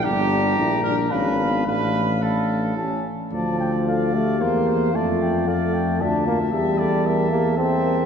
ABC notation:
X:1
M:3/4
L:1/8
Q:1/4=112
K:Dm
V:1 name="Cornet"
b4 ^e2 | f2 f2 a z | a g f f3 | a g f g a2- |
a4 a2 |]
V:2 name="Trumpet"
G3 B =B2 | =B2 A3 z | d2 d2 c c | d2 d2 e2 |
e d e2 e2 |]
V:3 name="French horn"
D2 E D ^C =B, | A,4- A, z | z2 A G3 | F4 F2 |
G A B G A B |]
V:4 name="Trombone"
D4 D2 | D2 D2 ^C z | F,3 A, B,2 | A,2 A,2 D B, |
G,3 B, C2 |]
V:5 name="Tuba" clef=bass
G,,,2 B,,,2 ^G,,,2 | A,,,4 A,,, z | D,,4 E,,2 | F,,4 D,,2 |
E,,6 |]